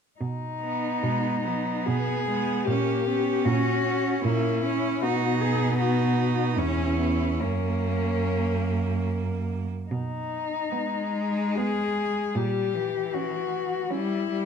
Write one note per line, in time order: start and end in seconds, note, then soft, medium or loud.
0.20 0.91 B2 soft
0.20 1.87 D#4 soft
0.62 1.43 B3 soft
1.01 1.76 B2 soft
1.01 1.46 G#3 soft
1.44 1.89 F#3 soft
1.44 2.26 B3 soft
1.86 2.56 B2 soft
1.86 2.29 B3 soft
1.86 2.66 G#4 medium
2.27 2.69 G#3 soft
2.27 2.67 B3 soft
2.65 3.34 A#2 soft
2.65 3.08 A#3 soft
2.65 3.46 G4 soft
2.69 3.07 C#4 soft
3.07 3.48 B3 soft
3.07 3.84 C#4 soft
3.45 4.12 A#2 medium
3.45 4.24 C#4 soft
3.45 4.23 F#4 medium
3.85 4.61 C#4 soft
4.24 4.90 A#2 soft
4.24 4.65 A#3 soft
4.24 5.03 E4 medium
4.63 5.03 C#4 soft
4.63 5.01 C#4 soft
5.01 6.60 B2 soft
5.01 6.59 B3 soft
5.01 5.76 D#4 soft
5.01 5.42 F#4 soft
5.40 5.79 G#4 medium
5.79 6.60 D#4 soft
5.79 6.57 F#4 soft
6.58 7.42 E2 soft
6.58 6.99 C#4 soft
6.58 7.42 C#4 soft
6.58 7.42 E4 soft
6.99 7.41 B3 soft
7.40 9.70 F#2 soft
7.40 9.49 A#3 soft
7.40 9.70 A#3 soft
7.40 9.07 C#4 soft
9.90 10.55 B2 soft
9.90 11.57 D#4 soft
10.72 12.36 G#3 soft
10.72 11.36 B3 soft
11.55 12.17 B3 soft
11.55 12.37 G#4 medium
12.35 12.99 A#2 soft
12.35 12.76 G3 soft
12.35 13.15 G4 soft
12.74 13.90 E3 soft
13.14 13.73 C#4 soft
13.14 13.92 F#4 soft
13.91 14.29 G3 soft
13.91 14.45 C#4 soft
13.91 14.45 E4 medium
14.29 14.45 G3 soft